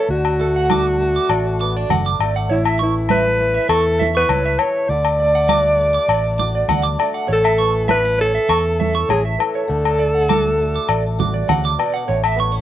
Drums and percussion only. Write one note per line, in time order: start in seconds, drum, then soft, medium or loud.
0.11 muted conga soft
0.25 low agogo medium
0.41 muted conga soft
0.70 high conga medium
0.70 low agogo medium
1.30 muted conga soft
1.30 low agogo medium
1.90 high conga medium
1.90 low conga medium
1.90 low agogo medium
2.20 muted conga soft
2.20 low agogo medium
2.51 muted conga soft
2.65 low agogo medium
2.81 muted conga soft
3.09 high conga medium
3.09 low agogo medium
3.70 muted conga soft
3.70 low agogo medium
4.02 high conga medium
4.29 high conga medium
4.29 low agogo medium
4.59 muted conga soft
4.59 low agogo medium
4.90 muted conga soft
5.05 low agogo medium
5.19 muted conga soft
5.49 high conga medium
5.49 low agogo medium
6.09 muted conga soft
6.09 low agogo medium
6.39 high conga medium
6.69 high conga medium
6.69 low conga soft
6.69 low agogo medium
7.00 muted conga soft
7.00 low agogo medium
7.29 muted conga soft
7.45 low agogo medium
7.59 muted conga soft
7.89 high conga medium
7.89 low agogo medium
8.49 muted conga soft
8.49 low agogo medium
8.81 high conga medium
9.10 high conga medium
9.10 low agogo medium
9.40 muted conga soft
9.40 low agogo medium
9.71 muted conga soft
9.85 low agogo medium
10.29 high conga medium
10.29 low agogo medium
10.89 muted conga soft
10.89 low agogo medium
11.20 high conga medium
11.20 low conga medium
11.49 high conga medium
11.49 low conga medium
11.49 low agogo medium
11.79 muted conga soft
11.79 low agogo medium
12.08 muted conga soft
12.24 low agogo medium
12.40 muted conga soft